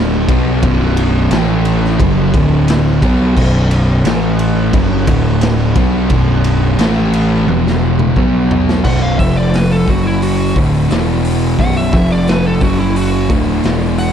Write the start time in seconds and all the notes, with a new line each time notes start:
Already playing: D1 D2 A2 D3
0.28 B1 B2 F#3 B3, kick, ride
0.63 B0 B1 F#2 B2, kick, ride
0.97 ride
1.31 A1 A2 E3 A3, snare, ride
1.65 ride
1.85 snare
1.99 F#1 F#2 C#3 F#3, kick, ride
2.33 D1 D2 A2 D3, kick, ride
2.68 snare, ride
3.02 B1 B2 F#3 B3, kick, ride
3.36 B0 B1 F#2 B2, kick, crash
3.71 ride
4.05 A1 A2 E3 A3, snare, ride
4.39 ride
4.73 F#1 F#2 C#3 F#3, kick, ride
5.07 D1 D2 A2 D3, kick, ride
5.41 snare, ride
5.75 B1 B2 F#3 B3, kick, ride
6.10 B0 B1 F#2 B2, kick, ride
6.44 ride
6.78 A1 A2 E3 A3, snare, ride
7.13 ride
7.47 E1 E2 B2 E3, high tom
7.67 snare
7.99 mid tom
8.16 B1 B2 F#3 B3, kick
8.51 floor tom
8.69 snare
8.84 B0 B1 F#2 B2 F#5, kick, crash
9.02 F5
9.19 F1 F2 C3 F3 E5, kick, open hi-hat
9.37 D5
9.53 B4, snare, open hi-hat
9.72 A4
9.88 F#1 F#2 C#3 F#3 F#4, kick, open hi-hat
10.07 E4
10.22 F#4, open hi-hat
10.56 D1 D2 A2 D3, kick, open hi-hat
10.90 E1 E2 B2 E3, snare, open hi-hat
11.25 open hi-hat
11.59 B0 B1 F#2 B2 F#5, kick, open hi-hat
11.77 E5
11.93 F1 F2 C3 F3 E5, kick, open hi-hat
12.12 D5
12.27 B4, snare, open hi-hat
12.46 A4
12.61 F#1 F#2 C#3 F#3 F#4, kick, open hi-hat
12.79 E4
12.96 F#4, open hi-hat
13.29 D1 D2 A2 D3, kick, open hi-hat
13.63 E1 E2 B2 E3, snare, open hi-hat
13.98 F#5, open hi-hat